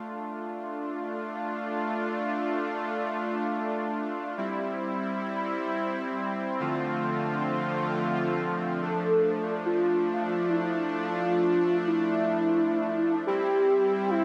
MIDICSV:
0, 0, Header, 1, 3, 480
1, 0, Start_track
1, 0, Key_signature, -1, "minor"
1, 0, Tempo, 500000
1, 13676, End_track
2, 0, Start_track
2, 0, Title_t, "Soft synth lead"
2, 0, Program_c, 0, 80
2, 8470, Note_on_c, 0, 69, 103
2, 9163, Note_off_c, 0, 69, 0
2, 9270, Note_on_c, 0, 65, 99
2, 10070, Note_on_c, 0, 64, 90
2, 10084, Note_off_c, 0, 65, 0
2, 10360, Note_off_c, 0, 64, 0
2, 10601, Note_on_c, 0, 65, 99
2, 11295, Note_off_c, 0, 65, 0
2, 11402, Note_on_c, 0, 64, 105
2, 12629, Note_off_c, 0, 64, 0
2, 12738, Note_on_c, 0, 67, 107
2, 13535, Note_on_c, 0, 64, 98
2, 13549, Note_off_c, 0, 67, 0
2, 13676, Note_off_c, 0, 64, 0
2, 13676, End_track
3, 0, Start_track
3, 0, Title_t, "Supersaw synth"
3, 0, Program_c, 1, 81
3, 0, Note_on_c, 1, 57, 75
3, 0, Note_on_c, 1, 62, 70
3, 0, Note_on_c, 1, 65, 86
3, 4164, Note_off_c, 1, 57, 0
3, 4164, Note_off_c, 1, 62, 0
3, 4164, Note_off_c, 1, 65, 0
3, 4200, Note_on_c, 1, 55, 76
3, 4200, Note_on_c, 1, 60, 72
3, 4200, Note_on_c, 1, 64, 89
3, 6313, Note_off_c, 1, 64, 0
3, 6314, Note_off_c, 1, 55, 0
3, 6336, Note_on_c, 1, 50, 80
3, 6336, Note_on_c, 1, 53, 73
3, 6337, Note_on_c, 1, 57, 72
3, 6337, Note_on_c, 1, 65, 88
3, 8430, Note_off_c, 1, 60, 0
3, 8448, Note_off_c, 1, 50, 0
3, 8448, Note_off_c, 1, 57, 0
3, 8448, Note_off_c, 1, 65, 0
3, 8471, Note_on_c, 1, 57, 72
3, 8471, Note_on_c, 1, 62, 87
3, 12698, Note_off_c, 1, 53, 0
3, 12698, Note_off_c, 1, 62, 0
3, 12699, Note_off_c, 1, 57, 0
3, 12739, Note_on_c, 1, 64, 87
3, 12740, Note_on_c, 1, 55, 80
3, 12740, Note_on_c, 1, 60, 72
3, 13676, Note_off_c, 1, 55, 0
3, 13676, Note_off_c, 1, 60, 0
3, 13676, Note_off_c, 1, 64, 0
3, 13676, End_track
0, 0, End_of_file